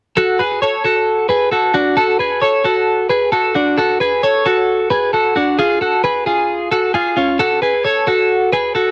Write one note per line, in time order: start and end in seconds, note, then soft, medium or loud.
0.17 0.40 F#4 medium
0.17 0.39 A4 medium
0.39 0.62 G#4 medium
0.39 0.62 B4 medium
0.62 0.83 A4 soft
0.62 0.84 C#5 medium
0.84 1.27 F#4 soft
0.84 1.27 A4 medium
1.29 1.52 G#4 soft
1.29 1.51 B4 medium
1.52 1.73 F#4 soft
1.52 1.74 A4 medium
1.74 1.97 D4 soft
1.74 1.96 F#4 medium
1.97 2.20 F#4 medium
1.97 2.19 A4 medium
2.19 2.43 G#4 soft
2.19 2.42 B4 medium
2.42 2.63 A4 medium
2.42 2.65 C#5 medium
2.65 3.08 F#4 soft
2.65 3.07 A4 medium
3.10 3.33 G#4 medium
3.10 3.32 B4 medium
3.32 3.54 F#4 medium
3.32 3.55 A4 medium
3.55 3.78 D4 medium
3.55 3.77 F#4 medium
3.78 4.01 F#4 medium
3.78 4.00 A4 medium
4.00 4.23 G#4 medium
4.00 4.23 B4 medium
4.23 4.44 A4 soft
4.23 4.46 C#5 medium
4.46 4.89 F#4 medium
4.46 4.88 A4 medium
4.90 5.14 G#4 medium
4.90 5.13 B4 medium
5.13 5.35 F#4 soft
5.13 5.36 A4 medium
5.36 5.59 D4 medium
5.36 5.59 F#4 medium
5.59 5.82 F4 medium
5.59 5.81 G#4 medium
5.81 6.04 F#4 soft
5.81 6.03 A4 medium
6.04 6.25 G#4 medium
6.04 6.26 B4 medium
6.26 6.69 F4 soft
6.26 6.69 G#4 medium
6.71 6.95 F#4 soft
6.71 6.94 A4 medium
6.94 7.15 F4 medium
6.94 7.17 G#4 medium
7.17 7.40 C#4 soft
7.17 7.39 F4 medium
7.39 7.62 F#4 medium
7.39 7.61 A4 medium
7.62 7.85 G#4 medium
7.62 7.85 B4 medium
7.85 8.06 A4 medium
7.85 8.07 C#5 medium
8.07 8.50 F#4 medium
8.07 8.50 A4 medium
8.52 8.75 G#4 medium
8.52 8.74 B4 medium
8.75 8.91 F#4 soft
8.75 8.91 A4 medium